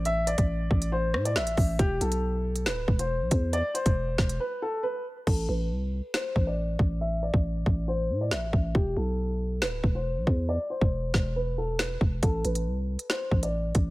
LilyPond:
<<
  \new Staff \with { instrumentName = "Upright piano" } { \time 4/4 \key e \phrygian \tempo 4 = 138 e''8 d''4. c''8. d''16 e''4 | g'8 a'4. b'8. c''4~ c''16 | d''8 c''4. b'8 a'8 b'8 r8 | a'8 b'4. c''8. d''4~ d''16 |
e''8 d''4. c''8. d''16 e''4 | g'8 a'4. b'8. c''4~ c''16 | d''8 c''4. b'8 a'8 b'8 r8 | a'8 b'4. c''8. d''4~ d''16 | }
  \new Staff \with { instrumentName = "808-style bass" } { \clef bass \time 4/4 \key e \phrygian a,,8. a,,8. a,,4 a,8 a,,8 a,,8 | e,,8 b,,4. d,,8 e,,8. b,,16 e,8~ | e,16 r8 e,,8. e,,8 r2 | a,,8 a,,8 c,8. r8. a,,4 a,,8~ |
a,,8. a,,8. a,,4 a,8 a,,8 a,,8 | e,,8 b,,4. d,,8 e,,8. b,,16 e,8~ | e,16 r8 e,,8. e,,2 e,,8 | a,,8 a,,8 c,8. r8. a,,4 a,,8 | }
  \new DrumStaff \with { instrumentName = "Drums" } \drummode { \time 4/4 hh8 hh16 <hh bd>16 r8 bd16 hh16 r8 ss16 hh16 sn16 hh16 <hho bd>8 | <hh bd>8 hh16 hh16 r8. hh16 sn8 bd16 hh16 r8 <hh bd>8 | hh8 hh16 <hh bd>16 r8 <bd sn>16 hh16 r4 r4 | <cymc bd>4 r4 sn8 bd8 r8 bd8 |
r8. bd16 r8 bd8 r4 sn8 bd8 | bd4 r4 sn8 bd8 r8 bd8 | r8. bd16 r8 <bd sn>8 r4 sn8 bd8 | <hh bd>8 hh16 hh16 r8. hh16 sn8 bd16 hh16 r8 <hh bd>8 | }
>>